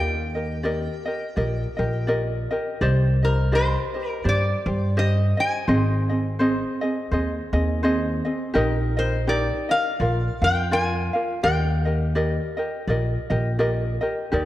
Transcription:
Already playing: upright bass D#2, ukulele G4 A#4 D5 D#5, resonator guitar played with a steel bar G5
0.35 ukulele G4 A#4 D#5
0.63 ukulele G4 A#4 D5 D#5
1.06 ukulele G4 A#4 D#5
1.36 upright bass A#1, ukulele G4 A#4 D5 D#5
1.77 upright bass A#1, ukulele G4 A#4 D#5
2.07 ukulele G4 A#4 D5 D#5
2.51 ukulele G4 A#4 D#5
2.81 upright bass C2, ukulele G4 C5 D5 D#5
3.23 ukulele G4 C5 D#5, resonator guitar played with a steel bar A#4
3.52 ukulele G4 C5 D5 D#5, resonator guitar played with a steel bar C5
3.94 ukulele G4 C5 D#5
4.09 resonator guitar played with a steel bar A#4
4.24 upright bass G2, ukulele G4 C5 D5
4.29 resonator guitar played with a steel bar D5
4.66 upright bass G2, ukulele G4 C5
4.97 ukulele G4 C5 D#5, resonator guitar played with a steel bar D#5
5.37 ukulele C5 D#5, resonator guitar played with a steel bar G#5
5.68 upright bass G#1, ukulele C4 G#4 C5 D#5
6.09 ukulele C4 G#4 D#5
6.39 ukulele C4 G#4 C5 D#5
6.81 ukulele C4 G#4 D#5
7.11 upright bass D#2, ukulele C4 G#4 C5 D#5
7.53 upright bass D#2, ukulele C4 G#4 D#5
7.83 ukulele C4 G#4 C5 D#5
8.25 ukulele C4 G#4 D#5
8.54 upright bass A#1, ukulele D#4 G4 A#4 D#5
8.97 ukulele D#4 A#4 D#5, resonator guitar played with a steel bar C5
9.27 ukulele D#4 G4 A#4, resonator guitar played with a steel bar D5
9.69 ukulele D#4 A#4 D#5, resonator guitar played with a steel bar F5
10.00 upright bass A#1, ukulele F4 A#4 D5 F5
10.42 upright bass F2, ukulele F4 A#4 F5, resonator guitar played with a steel bar G5
10.71 ukulele F4 A#4 D5 F5, resonator guitar played with a steel bar G#5
11.13 ukulele F4 A#4 F5
11.43 upright bass D#2, ukulele G4 A#4 D5 D#5, resonator guitar played with a steel bar G5
11.85 ukulele G4 A#4 D#5
12.15 ukulele G4 A#4 D5 D#5
12.57 ukulele G4 A#4 D#5
12.87 upright bass A#1, ukulele G4 A#4 D5 D#5
13.30 upright bass A#1, ukulele G4 A#4 D#5
13.59 ukulele G4 A#4 D5 D#5
14.01 ukulele G4 A#4 D#5
14.32 upright bass D#2, ukulele D#4 G4 A#4 D5

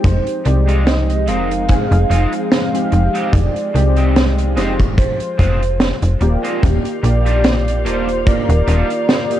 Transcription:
Already playing: synth keys G#3 C4 D#4 G4
0.04 fm bass F1, string section F3 G#3 C4 D#4, soft synth lead C5, kick, closed hi-hat
0.27 closed hi-hat
0.45 fm bass C2, synth keys G#3 C4 D#4 G4, soft synth lead D5, muted clean electric guitar stroke, closed hi-hat
0.67 clean electric guitar G#3 C4 D#4 F4, closed hi-hat
0.87 soft synth lead D#5, snare, closed hi-hat
1.10 closed hi-hat
1.27 fm bass F1, clean electric guitar G#3 C4 D#4 G#4, synth keys G#3 C4 D#4 A#4, soft synth lead F5, closed hi-hat
1.51 closed hi-hat
1.68 synth keys G#3 C4 D#4 G#4, kick, closed hi-hat
1.91 fm bass F1, closed hi-hat
2.10 fm bass F1, clean electric guitar G#3 C4 D#4 F4, closed hi-hat
2.32 closed hi-hat
2.51 soft synth lead F5, snare, closed hi-hat
2.72 synth keys G#3 C4 D#4 G4, closed hi-hat
2.92 fm bass F1, muted clean electric guitar stroke, closed hi-hat
3.14 clean electric guitar G#3 C4 D#4 G4, closed hi-hat
3.33 fm bass F1, string section F4, soft synth lead D5, kick, closed hi-hat
3.56 closed hi-hat
3.74 fm bass C2, synth keys G#3 C4 D#4 G4, muted clean electric guitar stroke, closed hi-hat
3.96 clean electric guitar G#3 C4 D#4 G4, closed hi-hat
4.16 snare, closed hi-hat
4.38 closed hi-hat
4.56 fm bass F1, synth keys G#3 C4 D#4 G4, clean electric guitar G#3 C4 D#4 F4, snare, closed hi-hat
4.80 kick, closed hi-hat
4.98 soft synth lead C5, kick, closed hi-hat
5.20 closed hi-hat
5.38 fm bass F1, clean electric guitar G#3 C4 D#4 F4, kick, closed hi-hat
5.63 closed hi-hat
5.80 snare, closed hi-hat
6.02 fm bass F1, closed hi-hat
6.21 fm bass D#1, synth keys A#3 F4 G4 D5, muted clean electric guitar stroke, closed hi-hat
6.43 clean electric guitar G#3 C4 D#4 F4, closed hi-hat
6.62 fm bass D#1, string section D#3 F4 G4 F5, kick, closed hi-hat
6.85 closed hi-hat
7.03 fm bass A#1, synth keys A#3 F4 G4 D5, soft synth lead D5, muted clean electric guitar stroke, closed hi-hat
7.25 clean electric guitar G3 D4 D#4 F4, closed hi-hat
7.44 snare, closed hi-hat
7.68 closed hi-hat
7.85 fm bass D#1, clean electric guitar G3 D4 D#4 F4, synth keys A#3 F4 C5 D5, soft synth lead C5, closed hi-hat
8.09 closed hi-hat
8.25 synth keys A#3 F4 A#4 D5, soft synth lead D5, kick, closed hi-hat
8.49 fm bass D#1, closed hi-hat
8.67 fm bass D#1, clean electric guitar G3 D4 D#4 F4, closed hi-hat
8.90 closed hi-hat
9.09 snare, closed hi-hat
9.30 synth keys A#3 F4 G4 D#5, closed hi-hat

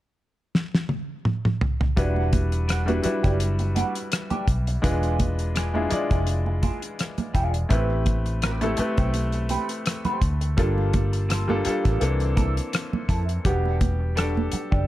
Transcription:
0.55 snare
0.75 snare
0.89 high tom
1.25 mid tom
1.45 mid tom
1.61 floor tom
1.81 floor tom
1.96 fingered electric bass E1, grand piano G3 D4 E4 F#4 B4, clean electric guitar G3 D4 F#4, kick, closed hi-hat, muted conga
2.16 muted conga
2.33 kick, closed hi-hat, high conga
2.52 muted clean electric guitar stroke, closed hi-hat
2.68 clean electric guitar G3 D4 F#4, cross-stick, closed hi-hat
2.86 grand piano G3 D4 E4 F#4 B4, closed hi-hat, muted conga, high conga
3.03 grand piano G3 D4 E4 F#4 B4, muted fingered electric bass stroke, muted clean electric guitar stroke, closed hi-hat, low conga
3.23 fingered electric bass F#1, clean electric guitar G3 D4 G4, kick, cross-stick, closed hi-hat
3.40 closed hi-hat
3.59 muted clean electric guitar stroke, closed hi-hat, muted conga
3.75 clean electric guitar G3 D4 F#4, closed hi-hat, high conga
3.95 muted clean electric guitar stroke, closed hi-hat
4.11 muted clean electric guitar stroke, cross-stick, closed hi-hat
4.30 clean electric guitar G3 D4 G4, closed hi-hat, high conga, low conga
4.47 fingered electric bass B1, muted clean electric guitar stroke, kick, closed hi-hat
4.67 muted clean electric guitar stroke, closed hi-hat
4.82 fingered electric bass E1, grand piano E3 G#3 D4 F4 B4, clean electric guitar D4 F4 G#4, kick, closed hi-hat, muted conga
5.03 closed hi-hat
5.19 kick, closed hi-hat, high conga
5.39 muted clean electric guitar stroke, closed hi-hat
5.55 clean electric guitar D4 F4 G#4, cross-stick, closed hi-hat, muted conga
5.74 grand piano G#3 D4 E4 F4 G#4, high conga
5.90 grand piano G#3 D4 E4 F4 D5, muted clean electric guitar stroke, muted fingered electric bass stroke, closed hi-hat, low conga
6.11 fingered electric bass F1, clean electric guitar D4 F4 G#4, kick, closed hi-hat
6.27 closed hi-hat
6.46 muted clean electric guitar stroke, muted conga
6.63 clean electric guitar D4 F4 G#4, kick, closed hi-hat, high conga
6.82 muted clean electric guitar stroke, closed hi-hat
6.99 cross-stick, closed hi-hat
7.18 muted clean electric guitar stroke, closed hi-hat, muted conga, high conga, low conga
7.34 fingered electric bass E1, clean electric guitar D4 F4 G#4, kick, closed hi-hat
7.54 muted clean electric guitar stroke, closed hi-hat
7.69 fingered electric bass A1, grand piano A3 C4 E4 G4 B4, clean electric guitar C4 G4 B4, kick, closed hi-hat, muted conga
7.90 muted conga
8.05 kick, closed hi-hat, high conga
8.26 muted clean electric guitar stroke, closed hi-hat
8.42 clean electric guitar C4 G4 B4, cross-stick, closed hi-hat, muted conga
8.61 grand piano A3 C4 E4 G4 A4, closed hi-hat, muted conga, high conga
8.77 grand piano A3 C4 E4 G4 B4, muted clean electric guitar stroke, muted fingered electric bass stroke, closed hi-hat, low conga
8.97 fingered electric bass B1, clean electric guitar C4 G4 C5, kick, closed hi-hat
9.14 closed hi-hat, muted conga
9.32 muted clean electric guitar stroke, closed hi-hat
9.49 clean electric guitar C4 G4 B4, closed hi-hat, high conga
9.69 muted clean electric guitar stroke, closed hi-hat
9.86 muted clean electric guitar stroke, cross-stick, closed hi-hat
10.05 clean electric guitar C4 G4 C5, closed hi-hat, high conga, low conga
10.22 fingered electric bass D2, muted clean electric guitar stroke, kick, closed hi-hat
10.41 muted clean electric guitar stroke, closed hi-hat
10.57 fingered electric bass G1, grand piano G3 A#3 D4 F4 A4, clean electric guitar A#3 F4 A4, kick, closed hi-hat, muted conga
10.78 muted conga
10.94 kick, closed hi-hat, high conga
11.13 muted clean electric guitar stroke, closed hi-hat
11.29 clean electric guitar A#3 F4 A4, cross-stick, closed hi-hat, muted conga
11.48 grand piano G3 A#3 D4 F4 A4, muted conga, high conga
11.65 grand piano G3 A#3 D4 F4 A4, muted clean electric guitar stroke, muted fingered electric bass stroke, closed hi-hat, low conga
11.84 fingered electric bass A1, clean electric guitar A#3 F4 A4, kick, cross-stick, closed hi-hat
12.00 fingered electric bass C2, grand piano E3 A#3 C4 D4 A4, closed hi-hat, muted conga
12.20 muted clean electric guitar stroke, closed hi-hat
12.36 clean electric guitar A#3 E4 A4, kick, closed hi-hat, high conga
12.56 muted clean electric guitar stroke, closed hi-hat
12.72 muted clean electric guitar stroke, cross-stick, closed hi-hat, muted conga
12.93 muted conga, high conga, low conga
13.08 fingered electric bass F2, clean electric guitar A#3 E4 A4, kick, closed hi-hat
13.28 muted clean electric guitar stroke, closed hi-hat
13.45 fingered electric bass E1, clean electric guitar G3 D4 F#4, grand piano G3 B3 D4 F#4 G4, kick, closed hi-hat, low conga
13.65 muted conga
13.81 kick, closed hi-hat, high conga
13.99 muted clean electric guitar stroke
14.16 clean electric guitar G3 D4 F#4, grand piano D4 A4, cross-stick, closed hi-hat
14.37 muted conga, high conga
14.52 muted clean electric guitar stroke, muted fingered electric bass stroke, closed hi-hat, low conga
14.71 fingered electric bass F#1, clean electric guitar G3 D4 G4, kick

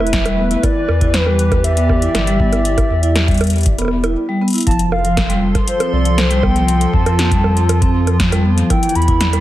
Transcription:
Already playing: sub bass E1, analog synth pad A3 E4 B4, soft synth lead E5
0.00 vibraphone E4, high bongo
0.07 closed hi-hat
0.13 kick, snare, closed hi-hat
0.26 vibraphone G3, closed hi-hat, high bongo
0.38 vibraphone B3
0.51 vibraphone E4, closed hi-hat
0.56 soft synth lead E5
0.63 analog synth pad E3, vibraphone E4, soft synth lead D5, kick, closed hi-hat, high bongo
0.89 sub bass E2, high bongo
0.97 analog synth pad G4
1.01 vibraphone E4, kick, closed hi-hat
1.14 soft synth lead B4, snare, closed hi-hat
1.26 vibraphone G3, high bongo
1.39 closed hi-hat
1.52 kick, closed hi-hat, high bongo
1.62 analog synth pad D5, soft synth lead E5, closed hi-hat
1.77 vibraphone B3, closed hi-hat
1.89 kick, high bongo
2.02 vibraphone E4, closed hi-hat
2.15 sub bass G1, snare, closed hi-hat, high bongo
2.27 vibraphone G3, closed hi-hat
2.40 vibraphone B3, kick
2.52 vibraphone E4, closed hi-hat, high bongo
2.65 vibraphone E4, closed hi-hat
2.78 kick, closed hi-hat, high bongo
2.90 sub bass E2
3.03 vibraphone E4, closed hi-hat
3.16 snare, closed hi-hat, high bongo
3.28 vibraphone G3, kick, closed hi-hat
3.31 closed hi-hat
3.34 closed hi-hat
3.38 closed hi-hat
3.41 closed hi-hat, high bongo
3.44 closed hi-hat
3.47 closed hi-hat
3.50 closed hi-hat
3.53 closed hi-hat
3.56 closed hi-hat
3.58 closed hi-hat
3.61 closed hi-hat
3.63 closed hi-hat
3.66 sub bass E1, kick, closed hi-hat
3.78 vibraphone B3, closed hi-hat, high bongo
3.82 high bongo
3.85 high bongo
3.88 high bongo
4.04 vibraphone E4, closed hi-hat, high bongo
4.29 vibraphone G3
4.42 vibraphone B3
4.48 closed hi-hat
4.50 closed hi-hat
4.53 vibraphone E4, closed hi-hat
4.55 closed hi-hat
4.58 closed hi-hat
4.60 closed hi-hat
4.63 closed hi-hat
4.67 sub bass F1, vibraphone F3, analog synth pad F3, soft synth lead A5, kick, closed hi-hat
4.71 closed hi-hat
4.79 analog synth pad F4 A4, closed hi-hat
4.92 soft synth lead F5, high bongo
4.96 analog synth pad C6
5.05 vibraphone F3, closed hi-hat
5.17 kick, snare, closed hi-hat, high bongo
5.30 vibraphone G3, closed hi-hat
5.55 kick, closed hi-hat, high bongo
5.68 soft synth lead C5, closed hi-hat
5.80 vibraphone C4, closed hi-hat, high bongo
5.93 sub bass C2, soft synth lead D5
6.05 vibraphone F3, closed hi-hat
6.18 soft synth lead C5, snare, closed hi-hat, high bongo
6.31 vibraphone G3, closed hi-hat
6.43 vibraphone B3, soft synth lead G5, kick, high bongo
6.56 vibraphone F3, closed hi-hat
6.68 vibraphone F3, closed hi-hat
6.81 closed hi-hat
6.94 sub bass F2, soft synth lead A5, kick
7.06 vibraphone F3, closed hi-hat, high bongo
7.19 snare, closed hi-hat
7.31 vibraphone G3, kick, closed hi-hat
7.44 high bongo
7.57 closed hi-hat
7.69 closed hi-hat, high bongo
7.82 vibraphone C4, kick, closed hi-hat
8.07 vibraphone F3, closed hi-hat, high bongo
8.20 kick, snare, closed hi-hat
8.32 vibraphone G3, closed hi-hat, high bongo
8.45 vibraphone B3
8.57 vibraphone F3, closed hi-hat
8.70 analog synth pad E3, vibraphone E4, soft synth lead G5, kick, closed hi-hat, high bongo
8.81 analog synth pad E4, closed hi-hat
8.89 closed hi-hat
8.95 sub bass E2, soft synth lead B5, closed hi-hat
9.02 closed hi-hat
9.08 vibraphone E4, kick, closed hi-hat
9.13 analog synth pad D5
9.21 snare, closed hi-hat
9.27 analog synth pad B4
9.33 vibraphone G3, closed hi-hat, high bongo

